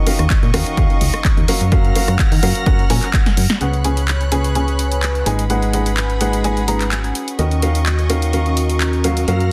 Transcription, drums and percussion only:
0.07 open hi-hat
0.19 cross-stick, closed hi-hat
0.30 kick, clap, closed hi-hat
0.43 closed hi-hat
0.54 cross-stick, open hi-hat
0.66 closed hi-hat
0.77 kick, closed hi-hat
0.90 closed hi-hat
1.01 open hi-hat
1.14 cross-stick, closed hi-hat
1.25 kick, clap, closed hi-hat
1.37 closed hi-hat
1.48 open hi-hat
1.61 closed hi-hat
1.72 kick, closed hi-hat
1.84 closed hi-hat
1.96 open hi-hat
2.08 cross-stick, closed hi-hat
2.19 kick, clap, closed hi-hat
2.32 open hi-hat
2.43 open hi-hat
2.55 closed hi-hat
2.66 kick, closed hi-hat
2.79 closed hi-hat
2.90 open hi-hat
3.03 clap, closed hi-hat
3.14 kick, clap, closed hi-hat
3.26 snare, closed hi-hat
3.37 open hi-hat
3.50 snare
3.61 closed hi-hat
3.73 closed hi-hat
3.84 closed hi-hat
3.97 closed hi-hat
4.08 clap, closed hi-hat
4.21 closed hi-hat
4.32 closed hi-hat
4.44 closed hi-hat
4.55 closed hi-hat
4.68 closed hi-hat
4.79 closed hi-hat
4.92 closed hi-hat
5.03 clap, closed hi-hat
5.15 closed hi-hat
5.26 closed hi-hat
5.39 closed hi-hat
5.50 closed hi-hat
5.62 closed hi-hat
5.73 closed hi-hat
5.86 closed hi-hat
5.97 clap, closed hi-hat
6.10 closed hi-hat
6.21 closed hi-hat
6.33 closed hi-hat
6.44 closed hi-hat
6.57 closed hi-hat
6.68 closed hi-hat
6.81 clap, closed hi-hat
6.92 clap, closed hi-hat
7.04 closed hi-hat
7.15 closed hi-hat
7.28 closed hi-hat
7.39 closed hi-hat
7.51 closed hi-hat
7.62 closed hi-hat
7.75 closed hi-hat
7.86 clap, closed hi-hat
7.99 closed hi-hat
8.10 closed hi-hat
8.22 closed hi-hat
8.33 closed hi-hat
8.46 closed hi-hat
8.57 closed hi-hat
8.70 closed hi-hat
8.81 clap, closed hi-hat
8.93 closed hi-hat
9.04 closed hi-hat
9.17 closed hi-hat
9.28 closed hi-hat
9.40 closed hi-hat

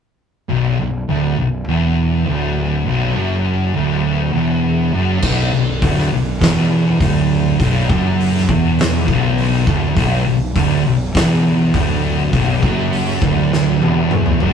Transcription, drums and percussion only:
5.22 kick, crash
5.82 kick, open hi-hat
5.99 snare
6.41 kick, snare, open hi-hat
7.01 kick, open hi-hat
7.60 kick, open hi-hat
7.90 kick
8.20 open hi-hat
8.37 snare
8.49 kick
8.79 snare, open hi-hat
9.08 kick
9.38 open hi-hat
9.67 kick
9.97 kick, open hi-hat
10.56 kick, open hi-hat
11.15 kick, snare, open hi-hat
11.74 kick, open hi-hat
12.33 kick, open hi-hat
12.63 kick
12.93 open hi-hat
13.22 kick
13.53 snare
13.82 high tom
14.11 mid tom
14.26 mid tom
14.40 floor tom

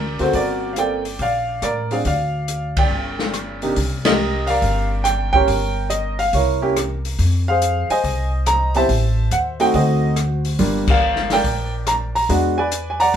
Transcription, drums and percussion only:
0.19 open hi-hat
0.33 kick, open hi-hat
0.76 closed hi-hat
1.05 open hi-hat
1.19 kick, open hi-hat
1.62 cross-stick, closed hi-hat
1.91 open hi-hat
2.05 kick, open hi-hat
2.48 closed hi-hat
2.77 kick, ride
3.19 snare
3.33 cross-stick, closed hi-hat
3.62 open hi-hat
3.76 kick, open hi-hat
4.05 snare, ride
4.47 open hi-hat
4.62 kick, open hi-hat
5.05 cross-stick, closed hi-hat
5.33 kick
5.48 kick, open hi-hat
5.90 closed hi-hat
6.19 open hi-hat
6.33 kick, open hi-hat
6.76 cross-stick, closed hi-hat
7.05 open hi-hat
7.19 kick, open hi-hat
7.62 closed hi-hat
7.90 open hi-hat
8.04 kick, open hi-hat
8.46 cross-stick, closed hi-hat
8.74 open hi-hat
8.89 kick, open hi-hat
9.31 closed hi-hat
9.60 open hi-hat
9.74 kick, open hi-hat
10.16 cross-stick, closed hi-hat
10.45 open hi-hat
10.59 kick, open hi-hat
10.87 kick, crash
11.16 snare
11.30 snare, open hi-hat
11.44 kick, open hi-hat
11.87 cross-stick, closed hi-hat
12.16 open hi-hat
12.29 kick, open hi-hat
12.72 closed hi-hat
13.00 open hi-hat

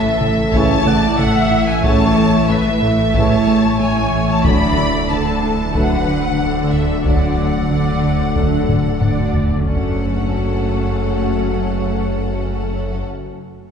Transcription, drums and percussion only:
0.21 taiko mid
0.54 taiko
0.87 taiko mid
1.19 taiko mid
1.84 taiko
3.14 taiko
4.45 taiko
5.75 taiko
7.06 taiko
8.36 taiko
8.69 taiko low-mid
9.01 taiko low-mid
9.34 taiko low
9.66 taiko

